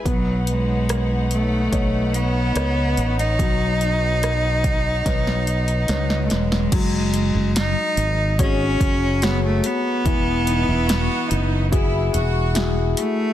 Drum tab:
CC |----------------|----------------|x---------------|----------------|
HH |x-x-x-x-x-x-x-xx|x-x-x-x-x-xxx-x-|x-x-x-x-x-x-x-x-|x-x-x-x-x-x-x-x-|
SD |----r-------r---|----r---oo--oooo|----o-------o---|----o-------o---|
BD |o-------o-------|o-----o-o-------|o-------o-o-----|o-------o-------|